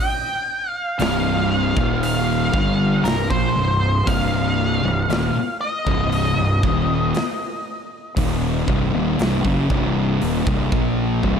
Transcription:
Already playing: G5
0.70 F5
0.99 C1 C2 G2 C3 F5, snare, open hi-hat
1.76 D#1 D#2 A#2 D#3, kick
2.03 F5, open hi-hat
2.53 G1 G2 D3 G3, kick
3.04 C1 C2 G2 A#4, snare, open hi-hat
3.30 A#1 A#2 F3 C5, kick
3.56 C1 C2 G2
4.06 C1 C2 G2 C3 F5, kick, open hi-hat
4.83 C1 C2 G2
5.09 D#1 D#2 A#2, snare, open hi-hat
5.35 muted fingered electric bass stroke, muted distorted electric guitar stroke
5.61 D#5
5.87 C1 C2 G2 C3, kick
6.12 open hi-hat
6.37 C1 C2 G2
6.63 D#1 D#2 A#2 D#3, kick
7.14 snare, open hi-hat
8.17 D#1 D#2 A#2 D#3, kick, open hi-hat
8.68 C1 C2 G2, kick
8.94 D#1 D#2 A#2
9.03 D5
9.19 C1 C2 G2, snare, open hi-hat
9.44 F#1 F#2 C#3, kick
9.70 C1 C2 G2 C3, kick
10.21 D#1 D#2 A#2, open hi-hat
10.47 C1 C2 G2, kick
10.72 A#1 A#2 F3 A#3, kick
11.22 C1 C2 G2 C3, kick

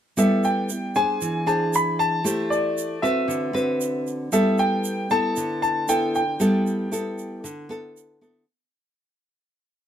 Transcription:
0.17 G3 B3 E4 A4 E5, shaker
0.44 G5, shaker
0.69 shaker
0.95 D4 G#4 C5 G#5, shaker
1.21 E3, shaker
1.46 D4 G#4 C5 A5, shaker
1.74 B5, shaker
1.99 A5, shaker
2.24 A3 E4 G4 C5, shaker
2.50 D5, shaker
2.78 shaker
3.02 C4 F#4 B4 E5, shaker
3.28 D3, shaker
3.53 C4 F#4 B4, shaker
3.81 shaker
4.07 shaker
4.32 G3 B3 E4 A4 E5, shaker
4.58 G5, shaker
4.84 shaker
5.10 B3 E4 A4 A5, shaker
5.36 D3, shaker
5.62 A5, shaker
5.88 B3 E4 A4 G5, shaker
6.15 G5, shaker
6.40 G3 B3 E4 A4, shaker
6.67 shaker
6.92 B3 E4 A4, shaker
7.18 shaker
7.44 D3, shaker
7.69 B3 E4 A4, shaker
7.97 shaker
8.21 B3 E4 A4, shaker

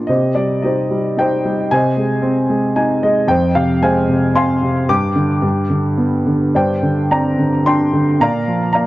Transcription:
Already playing: A#2 A#3 D4 F4 D5
0.07 C3 G4 C5 D#5
0.35 G3 D5
0.62 D#4 G4 C5 D#5
0.91 G3
1.17 D#4 C5 D#5 G5
1.45 G3
1.71 C3 C5 D#5 G#5
1.97 G#3
2.22 C4
2.49 G#3
2.76 D#4 G#5
3.03 G#3 D#5
3.27 F2 C5 G5
3.55 C3 F5
3.82 G#3 C5 F5 G#5
4.08 C3
4.34 C4 F5 G#5 C6
4.63 C3
4.89 G2 G5 D6
5.15 D3
5.42 G2
5.70 D3
5.97 B3
6.27 D3
6.55 G2 C5 D5 G5
6.83 D3
7.11 C4 D5 G5 A#5
7.39 D3
7.66 D4 G5 C6
7.93 D3
8.20 A#2 D5 F5 A#5
8.48 F3
8.73 A#3 D5 F5 A#5

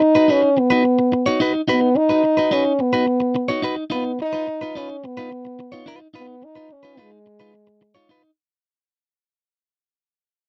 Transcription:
Already playing: D#4
0.01 muted clean electric guitar stroke
0.15 D#4 F#4 B4
0.28 C#4 D#4 F#4 B4
0.42 muted clean electric guitar stroke
0.57 B3, muted clean electric guitar stroke
0.70 D#4 F#4 B4
0.84 muted clean electric guitar stroke
0.99 muted clean electric guitar stroke
1.12 muted clean electric guitar stroke
1.26 D#4 F#4 C#5
1.40 D#4 F#4 B4
1.54 muted clean electric guitar stroke
1.68 B3 D#4 F#4 B4
1.81 muted clean electric guitar stroke
1.95 D#4, muted clean electric guitar stroke
2.09 D#4 F#4 B4
2.24 muted clean electric guitar stroke
2.37 D#4 F#4 B4
2.51 C#4 D#4 F#4 B4
2.65 muted clean electric guitar stroke
2.79 B3, muted clean electric guitar stroke
2.93 D#4 F#4 B4
3.06 muted clean electric guitar stroke
3.20 muted clean electric guitar stroke
3.35 muted clean electric guitar stroke
3.48 D#4 F#4 C#5
3.62 D#4 F#4 B4
3.77 muted clean electric guitar stroke
3.90 B3 D#4 F4 B4
4.05 muted clean electric guitar stroke
4.19 D#4, muted clean electric guitar stroke
4.33 D#4 F4 B4
4.48 muted clean electric guitar stroke
4.61 D#4 F4 B4
4.75 C#4 D#4 F4 B4
4.90 muted clean electric guitar stroke
5.04 B3, muted clean electric guitar stroke
5.17 D#4 F4 B4
5.31 muted clean electric guitar stroke
5.45 muted clean electric guitar stroke
5.59 muted clean electric guitar stroke
5.72 D#4 F4 C#5
5.86 D#4 F4 B4
6.00 muted clean electric guitar stroke
6.14 B3 D#4 F4 B4
6.28 muted clean electric guitar stroke
6.42 D#4, muted clean electric guitar stroke
6.55 D#4 F4 B4
6.69 C#4, muted clean electric guitar stroke
6.83 D#4 F4 B4
6.97 G#3 D#4 F4 B4
7.12 muted clean electric guitar stroke
7.26 muted clean electric guitar stroke
7.40 D#4 F4 B4
7.54 muted clean electric guitar stroke
7.67 muted clean electric guitar stroke
7.81 muted clean electric guitar stroke
7.95 D#4 F4 C#5
8.09 D#4 F4 B4
8.24 muted clean electric guitar stroke

